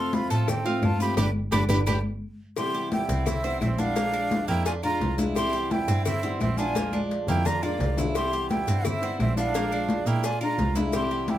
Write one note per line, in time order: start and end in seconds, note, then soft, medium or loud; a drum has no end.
0.00 0.24 F2 loud
0.00 0.47 C3 medium
0.00 0.47 F3 medium
0.00 0.47 A3 medium
0.00 0.47 C4 medium
0.00 0.48 F4 medium
0.00 0.16 A4 medium
0.00 0.30 F5 medium
0.00 0.16 C6 medium
0.13 0.31 F4 medium
0.13 0.31 B5 loud
0.13 cowbell medium
0.13 high conga loud
0.13 maracas soft
0.30 0.79 A2 loud
0.30 0.51 F4 medium
0.30 0.64 A4 medium
0.30 0.51 A5 loud
0.30 cowbell medium
0.30 high conga soft
0.30 maracas medium
0.48 0.86 C4 medium
0.48 0.87 G5 loud
0.48 muted steel-string acoustic guitar stroke medium
0.48 cowbell loud
0.48 high conga soft
0.48 low conga medium
0.48 claves medium
0.48 maracas medium
0.65 0.81 F3 medium
0.65 0.81 A3 medium
0.65 0.82 C4 medium
0.65 0.82 F4 medium
0.65 0.99 F4 loud
0.65 high conga soft
0.65 maracas soft
0.82 1.15 G2 loud
0.82 0.99 F3 medium
0.82 0.99 A3 medium
0.82 1.00 C4 medium
0.82 0.99 F4 medium
0.82 1.01 F4 medium
0.82 1.01 A5 loud
0.82 cowbell medium
0.82 high conga medium
0.82 claves medium
0.82 maracas soft
1.00 1.16 F3 medium
1.00 1.17 A3 medium
1.00 1.17 C4 medium
1.00 1.17 F4 medium
1.00 1.16 G4 medium
1.00 1.16 B4 medium
1.00 1.17 B5 loud
1.00 maracas medium
1.17 1.31 G1 loud
1.17 1.28 G3 loud
1.17 1.29 B3 loud
1.17 1.29 D4 medium
1.17 1.28 D4 medium
1.17 1.25 G4 loud
1.17 1.29 G4 medium
1.17 1.29 B4 medium
1.17 1.29 B5 medium
1.17 cowbell loud
1.17 high conga loud
1.17 claves medium
1.17 maracas loud
1.51 1.65 G1 loud
1.51 1.63 G3 loud
1.51 1.63 B3 loud
1.51 1.63 D4 loud
1.51 1.63 D4 medium
1.51 1.60 G4 loud
1.51 1.63 G4 medium
1.51 1.63 B4 medium
1.51 1.64 B5 loud
1.51 cowbell loud
1.51 high conga loud
1.51 claves loud
1.51 maracas loud
1.69 1.82 G1 loud
1.69 1.81 G3 medium
1.69 1.81 B3 medium
1.69 1.80 D4 medium
1.69 1.81 D4 loud
1.69 1.78 G4 loud
1.69 1.80 G4 medium
1.69 1.80 B4 loud
1.69 1.81 B5 loud
1.69 cowbell loud
1.69 high conga loud
1.69 claves loud
1.69 maracas loud
1.86 2.00 G1 loud
1.86 1.98 G3 loud
1.86 1.98 B3 medium
1.86 1.98 D4 medium
1.86 1.98 G4 loud
1.86 1.96 G4 loud
1.86 1.98 B4 medium
1.86 1.98 B5 loud
1.86 cowbell loud
1.86 high conga loud
1.86 claves loud
1.86 maracas loud
2.56 3.26 C3 medium
2.56 3.26 E3 medium
2.56 3.26 G3 medium
2.56 3.26 B3 medium
2.56 3.27 E4 medium
2.56 2.90 G4 loud
2.56 2.89 C6 loud
2.56 cowbell loud
2.56 high conga soft
2.56 claves medium
2.56 maracas medium
2.74 3.08 G4 medium
2.74 high conga soft
2.74 maracas soft
2.91 3.29 E4 medium
2.91 3.28 G5 medium
2.91 cowbell medium
2.91 high conga loud
2.91 maracas soft
3.09 3.58 C2 loud
3.09 3.26 C4 medium
3.09 cowbell medium
3.09 high conga soft
3.09 maracas medium
3.26 3.61 C4 medium
3.26 3.43 E4 medium
3.26 3.60 E5 loud
3.26 muted steel-string acoustic guitar stroke medium
3.26 cowbell loud
3.26 high conga soft
3.26 low conga medium
3.26 claves medium
3.26 maracas medium
3.44 3.60 E3 medium
3.44 3.60 G3 medium
3.44 3.61 B3 medium
3.44 3.61 E4 medium
3.44 3.78 C5 medium
3.44 high conga soft
3.44 maracas soft
3.61 4.43 A#1 loud
3.61 3.78 E3 soft
3.61 3.78 G3 medium
3.61 3.78 B3 medium
3.61 3.81 C4 medium
3.61 3.77 E4 medium
3.61 3.80 E5 medium
3.61 cowbell medium
3.61 high conga medium
3.61 claves medium
3.61 maracas soft
3.78 3.95 E3 medium
3.78 3.96 G3 medium
3.78 3.96 B3 medium
3.78 3.96 D4 medium
3.78 4.49 D4 medium
3.78 3.95 E4 medium
3.78 4.48 F5 loud
3.78 high conga medium
3.78 maracas medium
3.96 4.65 F3 medium
3.96 4.65 G#3 medium
3.96 4.13 A#3 medium
3.96 4.66 D4 medium
3.96 4.66 F4 medium
3.96 cowbell loud
3.96 high conga soft
3.96 maracas medium
4.13 4.47 D4 medium
4.13 high conga soft
4.13 claves medium
4.13 maracas soft
4.31 cowbell medium
4.31 high conga loud
4.31 maracas soft
4.48 4.97 F2 loud
4.48 4.65 A#3 medium
4.48 4.65 E4 medium
4.48 4.65 G5 loud
4.48 maracas medium
4.66 4.83 D4 medium
4.66 4.75 F4 medium
4.66 4.72 G#5 loud
4.66 muted steel-string acoustic guitar stroke medium
4.66 cowbell loud
4.66 high conga soft
4.66 maracas loud
4.83 5.01 G#3 medium
4.83 5.01 D4 medium
4.83 5.00 F4 medium
4.83 5.17 F4 medium
4.83 5.17 F4 loud
4.83 5.16 A#5 loud
4.83 high conga soft
4.83 claves medium
4.83 maracas soft
5.00 5.82 C2 medium
5.00 5.18 F3 soft
5.00 5.18 G#3 medium
5.00 5.18 D4 medium
5.00 5.17 F4 medium
5.00 cowbell medium
5.00 high conga medium
5.00 maracas soft
5.18 5.36 G#3 medium
5.18 5.36 D4 medium
5.18 5.52 E4 medium
5.18 5.35 F4 medium
5.18 cowbell medium
5.18 high conga medium
5.18 maracas medium
5.36 6.05 C3 medium
5.36 6.05 E3 medium
5.36 6.05 G3 medium
5.36 6.05 B3 medium
5.36 6.06 E4 medium
5.36 5.73 G4 loud
5.36 5.73 C6 loud
5.36 cowbell loud
5.36 high conga soft
5.36 claves medium
5.36 maracas medium
5.53 5.87 G4 medium
5.53 high conga soft
5.53 maracas soft
5.71 6.05 E4 medium
5.71 6.05 G5 loud
5.71 cowbell medium
5.71 high conga loud
5.71 maracas soft
5.88 6.37 G2 loud
5.88 6.05 C4 medium
5.88 cowbell medium
5.88 high conga soft
5.88 maracas medium
6.05 6.38 C4 medium
6.05 6.22 E4 medium
6.05 6.38 E5 loud
6.05 muted steel-string acoustic guitar stroke medium
6.05 cowbell loud
6.05 high conga soft
6.05 low conga medium
6.05 claves medium
6.05 maracas medium
6.23 6.39 E3 medium
6.23 6.41 G3 medium
6.23 6.40 B3 medium
6.23 6.40 E4 medium
6.23 6.57 C5 medium
6.23 high conga soft
6.23 maracas soft
6.40 7.22 A#1 medium
6.40 6.57 E3 soft
6.40 6.58 G3 medium
6.40 6.58 B3 medium
6.40 6.60 C4 medium
6.40 6.57 E4 medium
6.40 6.59 E5 medium
6.40 cowbell medium
6.40 high conga loud
6.40 claves medium
6.40 maracas soft
6.58 6.75 E3 medium
6.58 6.76 G3 medium
6.58 6.75 B3 medium
6.58 6.75 D4 medium
6.58 6.75 E4 medium
6.58 7.01 F4 medium
6.58 7.00 G#5 loud
6.58 maracas medium
6.75 7.44 F3 medium
6.75 7.45 G#3 medium
6.75 6.92 A#3 medium
6.75 7.45 D4 medium
6.75 7.46 F4 medium
6.75 cowbell loud
6.75 high conga loud
6.75 maracas medium
6.93 7.27 D4 medium
6.93 high conga medium
6.93 claves medium
6.93 maracas soft
7.11 cowbell medium
7.11 maracas soft
7.27 7.76 F2 loud
7.27 7.45 A#3 medium
7.27 7.46 E4 medium
7.27 7.48 G5 loud
7.27 low conga loud
7.27 maracas medium
7.45 7.62 D4 medium
7.45 7.66 F4 medium
7.45 7.65 A#5 loud
7.45 muted steel-string acoustic guitar stroke medium
7.45 cowbell loud
7.45 low conga medium
7.45 maracas medium
7.63 7.80 G#3 medium
7.63 7.98 A#3 medium
7.63 7.80 D4 medium
7.63 7.79 F4 medium
7.63 7.96 F4 medium
7.63 7.98 D5 medium
7.63 claves medium
7.63 maracas soft
7.80 8.61 C2 loud
7.80 7.97 F3 medium
7.80 7.97 G#3 soft
7.80 7.98 D4 medium
7.80 7.97 F4 medium
7.80 cowbell medium
7.80 low conga medium
7.80 maracas soft
7.97 8.15 G#3 medium
7.97 8.15 D4 medium
7.97 8.31 E4 medium
7.97 8.14 F4 medium
7.97 cowbell medium
7.97 low conga loud
7.97 maracas medium
8.15 8.84 C3 medium
8.15 8.84 E3 medium
8.15 8.85 G3 medium
8.15 8.85 B3 medium
8.15 8.85 E4 medium
8.15 8.48 G4 medium
8.15 8.48 C6 loud
8.15 cowbell loud
8.15 high conga soft
8.15 claves medium
8.15 maracas medium
8.33 8.67 G4 medium
8.33 high conga soft
8.33 maracas soft
8.50 8.87 E4 medium
8.50 8.87 G5 loud
8.50 cowbell medium
8.50 high conga medium
8.50 maracas soft
8.67 9.16 G2 loud
8.67 8.84 C4 medium
8.67 cowbell medium
8.67 high conga soft
8.67 maracas medium
8.85 9.19 C4 medium
8.85 9.02 E4 medium
8.85 9.20 E5 loud
8.85 muted steel-string acoustic guitar stroke medium
8.85 cowbell loud
8.85 high conga soft
8.85 low conga medium
8.85 claves medium
8.85 maracas medium
9.01 9.18 E3 medium
9.01 9.19 G3 medium
9.01 9.19 B3 medium
9.01 9.18 E4 medium
9.01 9.36 C5 medium
9.01 high conga soft
9.01 maracas soft
9.19 10.01 A#1 loud
9.19 9.36 E3 soft
9.19 9.36 G3 medium
9.19 9.36 B3 medium
9.19 9.36 C4 medium
9.19 9.36 E4 medium
9.19 9.37 E5 medium
9.19 cowbell medium
9.19 high conga medium
9.19 claves medium
9.19 maracas soft
9.37 9.53 E3 medium
9.37 9.54 G3 medium
9.37 9.54 B3 medium
9.37 10.08 D4 loud
9.37 9.54 D4 medium
9.37 9.53 E4 medium
9.37 10.09 F5 loud
9.37 maracas medium
9.54 10.23 F3 medium
9.54 10.23 G#3 medium
9.54 9.72 A#3 medium
9.54 10.24 D4 medium
9.54 10.24 F4 medium
9.54 cowbell loud
9.54 high conga soft
9.54 maracas medium
9.72 10.06 D4 medium
9.72 high conga soft
9.72 claves medium
9.72 maracas soft
9.89 cowbell medium
9.89 high conga loud
9.89 maracas soft
10.06 10.55 A#2 loud
10.06 10.24 A#3 medium
10.06 10.26 E4 medium
10.06 10.27 G5 loud
10.06 maracas medium
10.23 10.41 D4 medium
10.23 10.42 F4 medium
10.23 10.42 G#5 loud
10.23 muted steel-string acoustic guitar stroke medium
10.23 cowbell loud
10.23 high conga soft
10.23 maracas medium
10.41 10.59 G#3 medium
10.41 10.59 D4 medium
10.41 10.58 F4 medium
10.41 10.75 F4 medium
10.41 10.74 F4 medium
10.41 10.75 A#5 medium
10.41 high conga soft
10.41 claves medium
10.41 maracas soft
10.58 11.38 C2 medium
10.58 10.76 F3 medium
10.58 10.76 G#3 soft
10.58 10.74 F4 medium
10.58 cowbell medium
10.58 high conga medium
10.58 maracas soft
10.75 10.94 G#3 medium
10.75 10.93 D4 medium
10.75 11.10 E4 medium
10.75 10.93 F4 medium
10.75 cowbell medium
10.75 high conga medium
10.75 maracas medium
10.93 11.38 C3 medium
10.93 11.38 E3 medium
10.93 11.38 G3 medium
10.93 11.38 B3 medium
10.93 11.38 E4 medium
10.93 11.31 G4 medium
10.93 11.32 C6 loud
10.93 cowbell loud
10.93 high conga soft
10.93 claves medium
10.93 maracas medium
11.10 11.38 G4 medium
11.10 high conga soft
11.10 maracas soft
11.28 11.38 E4 medium
11.28 11.38 G5 medium
11.28 cowbell medium
11.28 high conga loud
11.28 maracas soft